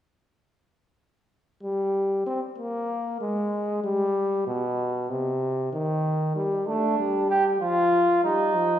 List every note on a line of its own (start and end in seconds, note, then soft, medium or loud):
1.63 2.23 G3 medium
2.27 2.41 C4 medium
2.58 3.20 A#3 medium
3.21 3.83 G#3 medium
3.84 4.46 G3 medium
4.47 5.11 B2 medium
5.10 5.72 C3 medium
5.73 6.35 D#3 medium
6.36 6.69 G3 medium
6.67 6.98 A3 medium
6.67 7.26 D4 medium
6.99 7.60 G3 medium
7.30 7.44 G4 medium
7.62 8.02 F3 medium
7.62 8.23 F4 medium
8.24 8.57 G3 medium
8.24 8.79 D#4 medium
8.56 8.79 F3 medium